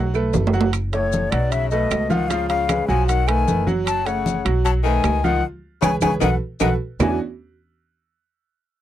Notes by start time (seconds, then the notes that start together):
Already playing: B1 F#3 F#4 F#5
0.14 A3 A4 B4, high conga, claves, maracas
0.34 F#1, high conga, low timbale, maracas
0.47 low timbale
0.53 F#3 F#4 F#5, maracas
0.61 low timbale
0.73 high conga, high timbale, claves, maracas
0.93 A2 A3 A4 C#5, high conga, high timbale, maracas
1.12 high conga, maracas
1.30 B1 B2 F#3 F#4 D5 F#5, high conga, high timbale, claves, maracas
1.50 C#3 E5, high conga, high timbale, maracas
1.70 B2 A3 A4 B4 D#5, high conga, maracas
1.91 C#2, high conga, high timbale, low timbale, claves, maracas
2.09 D#3 F3 F4 F5 F#5, high conga, maracas
2.28 C#3 F3 F4 F5, high conga, high timbale, maracas
2.49 C#3 F5, high conga, high timbale, maracas
2.68 G#3 G#4 B4, high conga, high timbale, claves, maracas
2.88 B1 F3 F#3 F#4 F#5 G#5, high conga, maracas
3.07 D#3 F#5, high conga, high timbale, maracas
3.27 D#3 A3 A4 B4 G#5, high conga, high timbale, claves, maracas
3.47 F#1 A3 A4 B4, high conga, maracas
3.67 F#3 F#4 F#5, high conga, maracas
3.85 F#3 A5, high conga, high timbale, claves, maracas
4.06 C#3 A3 A4 C#5 F#5, high conga, high timbale, maracas
4.26 high conga, maracas
4.45 B1 F#3 F#4 F#5, high conga, high timbale, claves, maracas
4.65 F#3 A5, high conga, high timbale, maracas
4.83 D#3 A3 A4 B4 G#5, high conga, maracas
5.04 C#2, high conga, high timbale, low timbale, claves, maracas
5.23 D#3 F3 F4 F5 F#5, high conga, maracas
5.81 C#2 C#3 G#4 B4 C#5 G#5, high conga, high timbale, claves, maracas
6.01 C#2 C#3 G#4 B4 C#5 G#5, high conga, high timbale, claves, maracas
6.20 B1 D#3 F#4 A4 B4 F#5, high conga, high timbale, claves, maracas
6.60 B1 D#3 F#4 A4 B4 F#5, high conga, high timbale, claves, maracas
6.99 E2 E3 B3 C#4 D4 E4 F#4 G#5, low conga, low timbale, claves, maracas